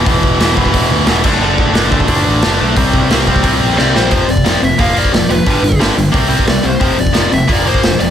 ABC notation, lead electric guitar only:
X:1
M:4/4
L:1/8
Q:1/4=178
K:Clyd
V:1 name="Lead electric guitar"
z8 | z8 | z6 d c- | [K:Flyd] c d2 e f d2 B- |
B2 z4 d c- | c d2 e d c2 d |]